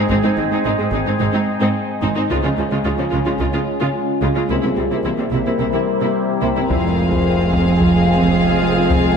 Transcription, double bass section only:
0.10 G#1
0.37 G#1
0.65 G#1
0.93 G#1
1.20 G#1
2.03 G#1
2.30 C#2
2.58 C#2
2.85 C#2
3.13 C#2
3.40 C#2
4.22 C#2
4.50 C2
4.77 C2
5.04 C2
5.32 C2
5.60 C2
6.43 C2
6.70 F1

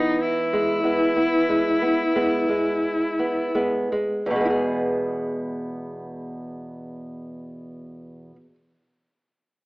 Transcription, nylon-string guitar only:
Already playing: E3 B3
0.53 G#3
0.84 G#3 B3
1.16 B3
1.49 G#3
1.82 B3
2.16 G#3 B3
2.49 G#3
3.19 B3
3.55 G#3 B3
3.92 G#3
4.26 E2
4.30 B2
4.36 G#3
4.41 B3
4.45 E4
4.50 G#4

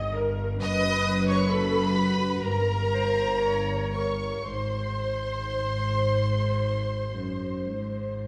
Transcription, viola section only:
Already playing: D#5
0.17 A#4
0.61 B4
1.51 A4
1.97 F#4
2.45 A#4
2.94 C5
3.44 C#5
3.96 A#4
4.48 C5

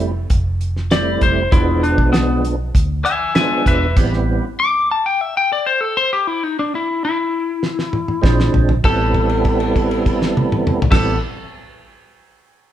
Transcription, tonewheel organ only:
Already playing: G3 A3 C4 E4
0.91 G3 A3 C4 E4
1.52 F3 G#3 B3 D4
3.35 F3 G#3 B3 D4
3.97 G3 B3 C4 E4
8.22 F3 G#3 C4 D4
8.84 G3 B3 C4 E4
10.91 G3 B3 C4 E4

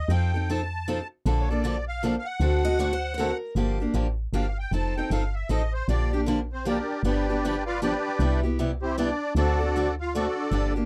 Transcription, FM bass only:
0.08 F2
1.26 A#1
2.40 D2
3.55 G1
3.94 A1
4.33 G1
4.71 F1
5.10 G1
5.49 A1
5.88 A#1
7.03 G1
8.19 C2
9.35 D2
10.51 G1

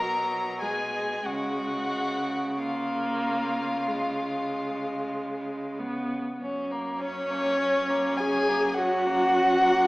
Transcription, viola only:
0.00 F#3
0.61 G#3
1.26 G#3
2.58 A#3
3.87 G#3
5.79 B3
7.00 C#4
8.19 G#4
8.77 F#4

